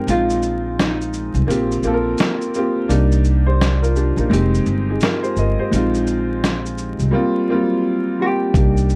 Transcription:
Already playing: G4
0.07 A#1 G#3 C4 D#4 F4, closed hi-hat, shaker
0.12 F4
0.30 shaker
0.43 shaker
0.79 D#4, snare, closed hi-hat, shaker
1.01 shaker
1.13 shaker
1.34 C2, shaker
1.47 A#1 A#3 C4 F4 G4, closed hi-hat, shaker
1.72 shaker
1.83 A#1 A#3 C4 F4, shaker
1.87 A4
1.94 A#4
2.18 snare, closed hi-hat, shaker
2.41 shaker
2.54 A#3 C4 F4, shaker
2.58 G4
2.88 C2 A#3 D4 D#4 G4, closed hi-hat, shaker
3.12 shaker
3.25 shaker
3.46 G4 C5
3.61 snare, closed hi-hat, shaker
3.82 F4 A#4, shaker
3.96 D4 G4, shaker
4.17 A#1 A#3 D#4, shaker
4.30 F1 G#3 C4 D#4 G4, closed hi-hat, shaker
4.55 shaker
4.66 G1, shaker
4.90 D#4 G#4
5.01 F4 A#4, snare, closed hi-hat, shaker
5.23 G4 C5, shaker
5.37 G1 A#4 D#5, shaker
5.60 G4 C5
5.71 A#1 G#3 C4 D#4 F4, closed hi-hat, shaker
5.95 shaker
6.07 shaker
6.44 snare, closed hi-hat, shaker
6.66 shaker
6.78 shaker
6.99 C2, shaker
7.11 G3 A#3 C4 F4
7.48 F#3 A#3 C4 F4
7.55 G3
8.19 G3 A#3 C4 F4 G4
8.54 C2 A#3 D4 D#4 G4, kick, closed hi-hat, shaker
8.77 shaker
8.90 shaker

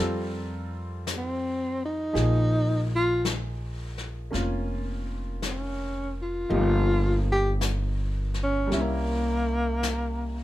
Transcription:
Already playing: F2 G3 C4 F4 A4 A#4
1.07 brush sweep, snare, hi-hat pedal
1.17 C4
1.85 D#4
2.13 A#1 F3 A#3 D#4 G#4, brush sweep, snare
2.96 F4
3.25 brush sweep, snare, hi-hat pedal
3.98 snare
4.31 F1 A#3 C#4 F4, brush sweep, snare
5.42 brush sweep, snare, hi-hat pedal
5.50 C#4
6.22 F4
6.49 G1 F3 A#3 D#4 G4, brush sweep
7.32 G4
7.61 brush sweep, snare, hi-hat pedal
8.34 snare
8.43 C#4
8.67 G3 A#3 C#4
8.72 C2 E4, brush sweep, snare
8.81 A#3
9.83 brush sweep, snare, hi-hat pedal

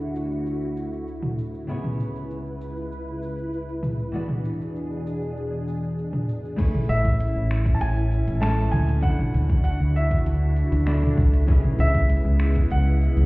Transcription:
Already playing: D2 D3 D4 E4 F#4 C#5
0.01 cabasa
0.16 cabasa
0.32 cabasa
0.46 cabasa
0.62 cabasa
0.77 cabasa
0.93 cabasa
1.08 cabasa
1.23 mid tom, cabasa
1.38 cabasa
1.54 cabasa
1.67 C#2 C#3 B3 E4 G#4 B4 C#5, cabasa
1.84 mid tom, cabasa
2.00 cabasa
2.16 cabasa
2.31 cabasa
2.46 cabasa
2.61 cabasa
2.77 cabasa
2.92 cabasa
3.08 cabasa
3.22 cabasa
3.38 cabasa
3.53 cabasa
3.69 cabasa
3.83 mid tom, cabasa
4.00 cabasa
4.12 E2 B2 E3 B3 D4 F#4 G#4 D5, cabasa
4.29 mid tom, cabasa
4.45 cabasa
4.61 cabasa
4.76 cabasa
4.92 cabasa
5.07 cabasa
5.22 cabasa
5.37 cabasa
5.53 cabasa
5.68 cabasa
5.83 cabasa
5.99 cabasa
6.13 mid tom, cabasa
6.29 cabasa
6.45 cabasa
6.56 A3 C#4 E4 G#4 B4 C#5, kick, closed hi-hat, crash, cabasa
6.74 mid tom, cabasa
6.89 A1 E5, closed hi-hat, cabasa
7.05 kick, closed hi-hat, cabasa
7.20 closed hi-hat, cabasa
7.35 A1, cabasa
7.51 finger snap, cabasa
7.66 kick, closed hi-hat, cabasa
7.75 A5
7.81 A1 G#5, closed hi-hat, cabasa
7.98 cabasa
8.12 closed hi-hat, cabasa
8.27 A1, closed hi-hat, cabasa
8.41 G#3 A3 E4 B4 C#5 A5, finger snap, closed hi-hat, cabasa
8.59 cabasa
8.72 D2 G#5, mid tom, cabasa
8.89 closed hi-hat, cabasa
9.01 D3 D4 E4 F#4 C#5 F#5, kick, closed hi-hat, cabasa
9.19 mid tom, cabasa
9.34 D2, closed hi-hat, cabasa
9.50 kick, closed hi-hat, cabasa
9.64 F#5, closed hi-hat, cabasa
9.80 D2, cabasa
9.96 E5, cabasa
10.11 kick, closed hi-hat, cabasa
10.25 D2, closed hi-hat, cabasa
10.43 cabasa
10.56 closed hi-hat, cabasa
10.72 D2, closed hi-hat, cabasa
10.86 D3 D4 E4 F#4 D5, finger snap, closed hi-hat, cabasa
11.03 mid tom, cabasa
11.18 C#2, kick, cabasa
11.34 closed hi-hat, cabasa
11.47 C#3 G#3 B3 C#4 E4 G#4 B4, kick, closed hi-hat, cabasa
11.51 E5
11.64 mid tom, cabasa
11.79 C#2 E5, closed hi-hat, cabasa
11.95 kick, closed hi-hat, cabasa
12.09 closed hi-hat, cabasa
12.25 C#2, cabasa
12.40 finger snap, cabasa
12.56 kick, closed hi-hat, cabasa
12.71 C#2 F#5, closed hi-hat, cabasa
12.88 cabasa
13.01 closed hi-hat, cabasa
13.16 C#2, closed hi-hat, cabasa

